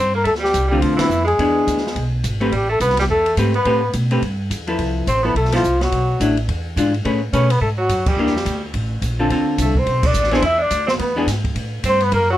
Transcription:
Already playing: G2 C4
0.00 C5
0.15 A#3 A#4
0.24 D2 A3 A4, kick, ride
0.35 snare
0.39 G3
0.43 G4, snare
0.54 C2, kick, hi-hat pedal, ride
0.67 G3 G4
0.71 D3 A3 C4 F4
0.78 D2 F3 F4, kick, ride
0.96 E3 E4, muted upright bass stroke, snare, ride
1.09 F2, hi-hat pedal
1.24 G#3 G#4, ride
1.38 E2 E3 B3 D4 G#4, kick, ride
1.67 D2, kick, hi-hat pedal, ride
1.77 snare
1.87 snare
1.95 B1, kick, ride
2.24 G#1, kick, hi-hat pedal, ride
2.41 A3 C4 G4 B4, ride
2.52 A1 G3 G4, kick, ride
2.69 A3 A4
2.80 C2 B3 B4, kick, hi-hat pedal, ride
2.90 snare
2.97 G3 G4, snare, ride
3.08 E2 A3 A4, kick
3.26 ride
3.37 G#2 A3 C4 G4 B4, kick, hi-hat pedal, ride
3.54 B3 B4, ride
3.65 A2 A3 C4 G4 B4, kick, ride
3.93 B2, kick, hi-hat pedal, ride
4.11 A3 C4 G4 B4, ride
4.22 G2, kick, ride
4.50 E2, kick, hi-hat pedal, ride
4.67 F3 E4 A4 B4, ride
4.78 C2, kick, ride
5.07 A1 C4 C5, kick, hi-hat pedal, ride
5.23 F3 B3 E4 A4
5.27 B4
5.35 B1 A3 A4, kick, ride
5.45 snare
5.52 F3 B3 E4 F4 A4, snare, ride
5.63 C2, kick, hi-hat pedal
5.80 F#3 F#4, snare, ride
5.92 B1, kick, ride
6.20 A1 A3 D4 E4, kick, hi-hat pedal, ride
6.37 ride
6.48 E2, kick, ride
6.76 G#2 E3 G#3 D4 F4, kick, hi-hat pedal, ride
6.94 ride
7.05 A2 A3 C#4 G#4 B4, kick, ride
7.33 B2 A3 C#4 G#4 B4 C#5, kick, hi-hat pedal, ride
7.50 B3 B4, ride
7.61 G#2 A3 A4, kick
7.78 F#3 F#4
7.89 F#2, kick, hi-hat pedal, ride
8.06 G3 G4, kick, crash
8.17 E2 E3 A#3 D4 G4
8.27 snare
8.36 snare
8.45 D2, kick, hi-hat pedal, ride
8.74 A1, kick, ride
9.02 A#1, kick, hi-hat pedal, ride
9.19 D3 C4 F4 A4
9.30 D2 D3 C4 F4 A4, kick, ride
9.58 C2 A3, kick, hi-hat pedal, ride
9.64 A4
9.75 C4, kick
9.80 C5
9.86 B1, kick, ride
10.03 D4 D5, kick, crash
10.14 A1, hi-hat pedal
10.23 snare
10.31 E3 B3 C4 D4 G#4, snare, ride
10.36 C5
10.42 E2 E4 E5, kick, ride
10.58 D4 D5
10.71 D2, kick, hi-hat pedal, ride
10.87 C4 C5, snare
10.99 E2 B3 B4, kick, ride
11.16 E3 B3 D4 G#4
11.27 G#2, kick, snare, hi-hat pedal, ride
11.44 kick, ride
11.55 A2, kick, ride
11.83 G2 C4, kick, hi-hat pedal, ride
11.89 C5
12.01 B3, ride
12.05 B4
12.12 F#2 A#3 A#4, kick, ride
12.30 F#3 F#4

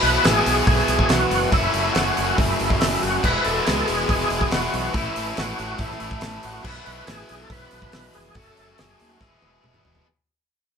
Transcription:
Already playing: B2 E3 B3 E4 F#4 B4
0.03 B1, open hi-hat
0.24 A1 G#4, snare, open hi-hat
0.46 B1, open hi-hat
0.67 B1 G#4, kick, open hi-hat
0.78 snare
0.88 B1, open hi-hat
0.99 kick
1.09 B1 F#4, snare, open hi-hat
1.31 F#1, open hi-hat
1.51 F#1 F#2 C#3 F#3 A3 C#4 E4, kick, open hi-hat
1.55 F#4
1.74 F#1, open hi-hat
1.93 F#1 F#4, snare, open hi-hat
2.17 F#1, open hi-hat
2.29 F#4
2.36 F#1 E4, kick, open hi-hat
2.60 F#1, open hi-hat
2.70 kick
2.80 F#1 E4, snare, open hi-hat
3.03 F#1 F#4, open hi-hat
3.22 E1 E2 B2 E3 G#3 B3 B4, kick, crash
3.27 E4
3.44 E1 A4, open hi-hat
3.65 C#2 G#4, snare, open hi-hat
3.79 A4
3.86 E1 G#4, open hi-hat
4.09 E1, kick, open hi-hat
4.21 snare
4.30 E1, open hi-hat
4.41 kick
4.51 E1 F#4, snare, open hi-hat
4.74 B1, open hi-hat
4.93 A1 A2 E3 A3 C#4 E4, kick, open hi-hat
5.16 A1, open hi-hat
5.36 A1 F#4, snare, open hi-hat
5.58 A1 F#4, open hi-hat
5.79 A1 E4, kick, open hi-hat
5.91 snare
6.00 A1, open hi-hat
6.11 kick
6.21 A1, snare, open hi-hat
6.43 A1 F#4, open hi-hat
6.63 B1 B2 E3 B3 E4 F#4 B4, kick, crash
6.86 B1, open hi-hat
7.07 A1 G#4, snare, open hi-hat
7.29 B1, open hi-hat
7.40 A4
7.50 B1 B4, kick, open hi-hat
7.71 B1, open hi-hat
7.82 kick
7.92 B1, snare, open hi-hat
8.13 F1 G#4, open hi-hat
8.35 F#1 F#2 C#3 F#3 A3 C#4 F#4 A4, kick, open hi-hat
8.57 F#1, open hi-hat
8.78 F#1 G#4, snare, open hi-hat
9.00 D#2, open hi-hat
9.09 F#4
9.20 E1 E2 B2 E3 G#3 B3 E4 G#4, kick, snare
9.42 E1, high tom
9.64 E1, mid tom
9.74 mid tom
9.85 E1, floor tom
9.95 floor tom

